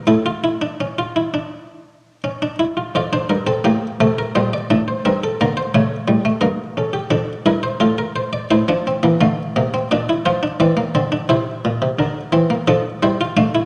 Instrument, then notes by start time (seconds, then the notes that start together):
harpsichord
0.07 A2 E4 A4
0.26 F4
0.44 E4
0.62 D4
0.81 C#4
0.99 F4
1.16 E4
1.34 D4
2.24 C#4
2.42 D4
2.59 E4
2.77 F4
2.95 F2 F4 D5
3.13 D4 C5
3.30 G2 A#4
3.47 C4 A4
3.64 A2 A#3 G4
4.01 C3 A3 A4
4.19 A#4
4.35 A#2 G3 C5
4.53 D5
4.70 A2 D4 E5
4.88 C5
5.05 G2 C4 A#4
5.24 A4
5.41 D3 A#3 A#4
5.57 C5
5.75 C#3 A3 C#5
6.08 A2 G3
6.25 A3
6.41 G2 A#3 A#4
6.77 C#4 A4
6.93 G4
7.10 F2 D4 A4
7.46 G2 E4 A#4
7.63 C5
7.80 A2 F4 A4
7.99 A#4
8.16 C5
8.33 D5
8.51 A2 E4 C5
8.68 F3 D4
8.87 C4
9.03 E3 A#3
9.21 D3 A3 F5
9.56 C3 A#3
9.74 C4
9.91 A#2 D4 D5
10.09 E4
10.26 F3 F4 C5
10.43 D4
10.60 E3 C4 D5
10.77 A#3
10.95 D3 C4
11.12 D4
11.29 C3 E4 C5
11.65 A#2
11.82 C3
11.98 D3 D4 A#4
12.32 E3 C4
12.50 A#3
12.67 F3 D4 A4
13.02 G3 E4 C5
13.21 F4
13.37 A3 D4 F5
13.55 E4